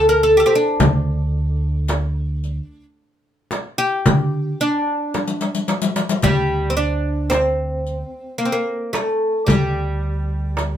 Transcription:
Already playing: upright bass D2
0.09 oud A#4
0.23 oud A4
0.37 oud G4 A4
0.46 oud C4 G4
0.55 oud D4
0.80 upright bass D2, riq, frame drum, darbuka dum
1.88 riq, darbuka tek, frame drum
2.44 riq, darbuka ka
3.51 riq, darbuka tek, frame drum
3.78 oud G4
4.06 upright bass D3, riq, frame drum, darbuka dum
4.60 oud D4, riq
5.14 riq, darbuka tek, frame drum
5.28 riq
5.41 riq, darbuka ka
5.55 riq
5.68 riq, darbuka tek
5.82 riq
5.96 riq, darbuka ka
6.09 riq
6.22 upright bass D2, oud G3, riq, frame drum, darbuka dum
6.70 oud C4
6.77 oud D4
7.30 oud C4, riq, darbuka tek, frame drum
7.87 riq
8.38 oud A#3
8.45 oud C4
8.52 oud A#3
8.93 oud A3, riq, darbuka tek, frame drum
9.47 upright bass D2, oud G3, riq, frame drum, darbuka dum
10.03 darbuka ka
10.57 riq, darbuka tek, frame drum

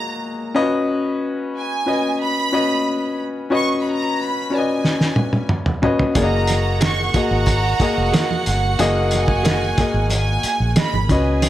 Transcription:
Already playing: grand piano A#3 F#4 G#4 D#5, violin section A#5
0.55 grand piano C#4 F4 B4 D#5
0.62 grand piano F#4
1.56 violin section G#5
1.86 grand piano C#4 F#4 B4 D#5
2.21 violin section B5
2.52 grand piano C#4 F#4 B4 D#5
3.50 grand piano C#4 F#4 B4 D#5, violin section C#6
3.80 violin section B5
3.87 violin section A#5
4.21 violin section B5
4.50 grand piano C#4 F#4 B4 D5
4.55 grand piano D#5, violin section G#5
4.84 snare
5.01 snare
5.16 high tom
5.33 high tom
5.49 mid tom
5.66 mid tom
5.82 grand piano C#4 F#4 B4 D#5, floor tom
5.99 floor tom
6.15 fingered electric bass F#1, grand piano A#3 F#4 G#4 D5, violin section F#4 F#5, kick, closed hi-hat, muted conga
6.19 grand piano D#5, violin section A#5
6.47 closed hi-hat, muted conga
6.81 clean electric guitar G#4 A#4 D#5, violin section C#6, snare, closed hi-hat, high conga
7.14 grand piano A#3 F#4 G#4 D#5, violin section A#5, muted fingered electric bass stroke, kick, closed hi-hat
7.31 fingered electric bass G#1
7.46 kick, closed hi-hat, muted conga
7.80 grand piano A#3 F#4 G#4 D#5, muted fingered electric bass stroke, kick, closed hi-hat
7.98 fingered electric bass F1
8.13 clean electric guitar G#4 A#4 D#5, snare, closed hi-hat, high conga
8.31 high conga
8.46 fingered electric bass G1, closed hi-hat
8.79 fingered electric bass F#1, grand piano A#3 F#4 G#4 D#5, closed hi-hat, muted conga
9.11 closed hi-hat, muted conga
9.16 violin section G#5
9.28 kick
9.43 clean electric guitar G#4 A#4 D#5, snare, closed hi-hat, high conga
9.78 grand piano A#3 F#4 G#4 D#5, muted fingered electric bass stroke, kick, snare, closed hi-hat
9.94 fingered electric bass G#1
10.10 violin section G#5, closed hi-hat, muted conga
10.43 muted fingered electric bass stroke, closed hi-hat
10.60 fingered electric bass A#1
10.76 clean electric guitar G#4 A#4 D#5, violin section B5, snare, closed hi-hat, high conga
10.93 fingered electric bass G#1, high conga
11.09 fingered electric bass C#2, grand piano C#4 F#4 B4 D#5, violin section G#4 G#5, kick, closed hi-hat
11.42 closed hi-hat, muted conga

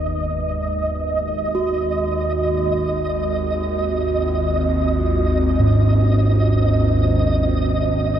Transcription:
Already playing: synth drone G#1 D#2, analog synth pad G#3 B3 D#4 B4, synth texture D#5
1.55 singing bowl F#4
3.10 analog synth pad C4
3.31 analog synth pad F4
5.27 analog synth pad C5
5.59 singing bowl G#2

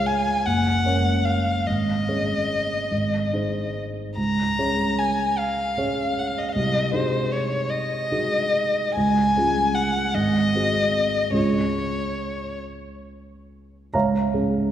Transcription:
Already playing: grand piano C#2 F4 G#4 C#5
0.06 violin G#5
0.46 grand piano F#1, violin F#5
0.85 grand piano C#4 A#4 C#5
1.25 violin F5
1.67 grand piano G#1, violin D#5
2.09 grand piano C#4 G#4 C#5
2.91 grand piano G#1
3.33 grand piano D#4 G#4 C5
4.17 grand piano C#2, violin A#5
4.58 grand piano C#4 G#4 C#5
4.98 violin G#5
5.37 violin F5
5.77 grand piano C#4 G#4 C#5
6.19 violin F#5
6.27 violin F5
6.38 violin D#5
6.49 violin F5
6.55 grand piano C2, violin D#5
6.94 grand piano D#4 F#4 G#4, violin C5
7.32 violin C#5
7.70 violin D#5
8.11 grand piano D#4 F#4 G#4
8.96 grand piano C#2, violin G#5
9.36 grand piano C#4 F4 G#4
9.75 violin F#5
10.14 grand piano G#1, violin D#5
10.55 grand piano C4 F#4 G#4
11.30 grand piano C#2 C#4 F4 G#4
11.36 violin C#5
13.94 grand piano C#2 C#5 F5 A#5
14.34 grand piano G#3 C#4 G#4

